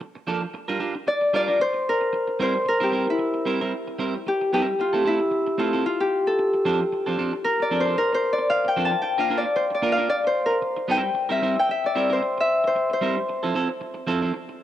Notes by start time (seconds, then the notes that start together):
0.01 muted clean electric guitar stroke
0.15 muted clean electric guitar stroke
0.27 F3 A#3 D4 A4
0.42 muted clean electric guitar stroke
0.54 muted clean electric guitar stroke
0.68 G3 D4 F4 A#4
0.79 G3 D4 F4 A#4
0.95 muted clean electric guitar stroke
1.07 D5, muted clean electric guitar stroke
1.21 muted clean electric guitar stroke
1.33 G3 D4 F4 A#4 D5
1.48 G3 D4 F4 A#4
1.60 C5, muted clean electric guitar stroke
1.73 muted clean electric guitar stroke
1.89 A#4
2.01 muted clean electric guitar stroke
2.13 muted clean electric guitar stroke
2.27 muted clean electric guitar stroke
2.39 G3 C4 E4 A#4 C5
2.55 muted clean electric guitar stroke
2.65 A#4, muted clean electric guitar stroke
2.80 G3 C4 E4 G4 A#4
2.92 G3 C4 E4 A#4
3.07 E4, muted clean electric guitar stroke
3.19 muted clean electric guitar stroke
3.34 muted clean electric guitar stroke
3.45 G3 C4 E4 A#4
3.61 G3 C4 E4 A#4
3.87 muted clean electric guitar stroke
3.99 G3 C4 E4 A#4
4.15 muted clean electric guitar stroke
4.26 G4, muted clean electric guitar stroke
4.41 muted clean electric guitar stroke
4.53 G3 C4 E4 G4 A#4
4.67 muted clean electric guitar stroke
4.79 F4, muted clean electric guitar stroke
4.93 A3 C4 E4 A4
5.05 A3 C4 E4 A4
5.20 muted clean electric guitar stroke
5.31 muted clean electric guitar stroke
5.47 muted clean electric guitar stroke
5.58 A3 C4 E4 F4 A4
5.73 A3 C4 E4 A4
5.86 F4, muted clean electric guitar stroke
6.00 G4, muted clean electric guitar stroke
6.27 A4, muted clean electric guitar stroke
6.38 muted clean electric guitar stroke
6.54 muted clean electric guitar stroke
6.65 F3 C4 D4 A4
6.80 muted clean electric guitar stroke
6.92 muted clean electric guitar stroke
7.06 F3 C4 D4 A4
7.18 F3 C4 D4 A4
7.33 muted clean electric guitar stroke
7.44 A#4, muted clean electric guitar stroke
7.60 D5, muted clean electric guitar stroke
7.71 F3 C4 D4 A4
7.80 C5
7.85 F3 C4 D4 A4
7.97 A#4, muted clean electric guitar stroke
8.13 C5, muted clean electric guitar stroke
8.33 D5
8.38 muted clean electric guitar stroke
8.50 F5, muted clean electric guitar stroke
8.65 G5, muted clean electric guitar stroke
8.76 F3 C4 D4 A4
8.85 A5
8.91 muted clean electric guitar stroke
9.02 G5, muted clean electric guitar stroke
9.18 A#3 D4 F4 A#4 F5
9.30 A#3 D4 F4 A#4
9.38 D5
9.44 muted clean electric guitar stroke
9.56 C5, muted clean electric guitar stroke
9.70 muted clean electric guitar stroke
9.74 D5
9.82 A#3 D4 F4 A#4
9.92 F5
9.97 A#3 D4 F4 A#4
10.09 D5, muted clean electric guitar stroke
10.24 C5, muted clean electric guitar stroke
10.46 A#4
10.51 muted clean electric guitar stroke
10.62 muted clean electric guitar stroke
10.77 muted clean electric guitar stroke
10.88 G3 C4 E4 A#4 G5
11.02 muted clean electric guitar stroke
11.14 muted clean electric guitar stroke
11.29 G3 C4 E4 A#4 E5
11.42 G3 C4 E4 A#4
11.56 G5, muted clean electric guitar stroke
11.69 E5, muted clean electric guitar stroke
11.84 D5, muted clean electric guitar stroke
11.95 G3 C4 E4 A#4
12.10 G3 C4 E4 A#4 C5
12.22 muted clean electric guitar stroke
12.38 E5, muted clean electric guitar stroke
12.64 C5, muted clean electric guitar stroke
12.75 muted clean electric guitar stroke
12.90 C5, muted clean electric guitar stroke
13.01 G3 C4 E4 A#4
13.16 muted clean electric guitar stroke
13.29 muted clean electric guitar stroke
13.43 F3 C4 E4 A4
13.54 F3 C4 E4 A4
13.69 muted clean electric guitar stroke
13.81 muted clean electric guitar stroke
13.94 muted clean electric guitar stroke
14.07 F3 C4 E4 A4
14.22 F3 C4 E4 A4
14.33 muted clean electric guitar stroke
14.49 muted clean electric guitar stroke